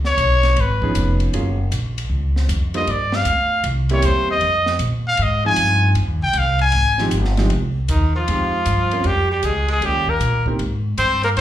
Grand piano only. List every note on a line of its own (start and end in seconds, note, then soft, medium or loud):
0.83 1.32 F3 medium
0.83 1.32 B3 medium
0.83 1.32 C#4 medium
0.83 1.32 D#4 medium
0.83 1.32 G#4 medium
1.34 1.57 F#3 medium
1.34 1.57 A#3 medium
1.34 1.57 C#4 medium
1.34 1.57 F4 medium
1.34 1.57 G#4 medium
2.74 2.86 G3 medium
2.74 2.86 A#3 medium
2.74 2.86 D4 medium
2.74 2.86 F4 medium
2.74 2.87 C5 medium
3.90 4.39 G3 medium
3.90 4.39 A#3 medium
3.90 4.39 C4 medium
3.90 4.39 E4 medium
3.90 4.39 G4 medium
5.45 5.94 F3 medium
5.45 5.94 C4 medium
5.45 5.94 D#4 medium
5.45 5.94 F4 medium
5.45 5.94 G#4 medium
7.00 7.11 F3 medium
7.00 7.11 G#3 medium
7.00 7.11 C4 medium
7.00 7.11 D#4 medium
7.00 7.11 G4 medium
7.38 7.49 F3 medium
7.38 7.50 G#3 medium
7.38 7.50 C4 medium
7.38 7.50 D#4 medium
7.38 7.50 G4 medium
8.28 8.51 G#3 medium
8.28 8.51 C4 medium
8.28 8.51 D#4 soft
8.28 8.51 G4 medium
8.92 9.04 C4 medium
8.92 9.04 C#4 medium
8.92 9.04 F4 medium
8.92 9.04 A#4 medium
9.83 10.05 A#3 medium
9.83 10.06 C#4 medium
9.83 10.05 F4 soft
9.83 10.06 G4 medium
10.47 10.58 A#3 medium
10.47 10.59 C4 medium
10.47 10.59 D#4 medium
10.47 10.58 G4 medium
11.37 11.41 A#3 soft
11.37 11.41 C4 medium
11.37 11.41 D#4 medium
11.37 11.41 G4 medium